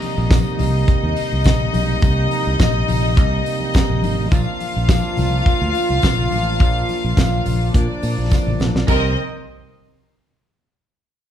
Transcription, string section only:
0.00 4.27 D#4 medium
0.00 4.27 D#5 loud
4.32 7.70 F4 medium
4.32 7.70 F5 loud
7.75 8.86 D4 medium
7.75 8.86 D5 medium
8.88 9.15 C4 medium
8.88 9.15 A#4 loud
8.88 9.15 D#5 loud

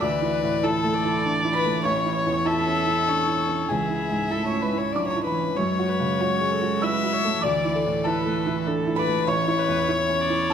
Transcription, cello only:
0.02 3.70 E3 medium
3.70 4.25 E3 soft
4.34 4.66 A3 medium
4.65 4.98 G#3 medium
4.96 5.28 F#3 medium
5.28 5.58 E3 soft
5.60 7.41 G#3 medium
7.43 10.54 E3 medium

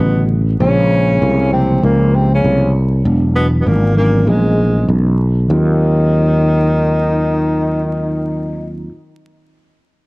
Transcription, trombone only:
0.00 0.30 B2 medium
0.60 1.48 C#3 loud
1.52 1.80 C3 medium
1.83 2.15 A#2 medium
2.14 2.32 C3 medium
2.33 2.72 C#3 medium
3.36 3.47 B2 medium
3.61 3.68 B2 medium
3.66 3.96 A#2 medium
3.97 4.29 A#2 medium
4.28 4.89 G#2 medium
5.50 8.71 D#4 medium

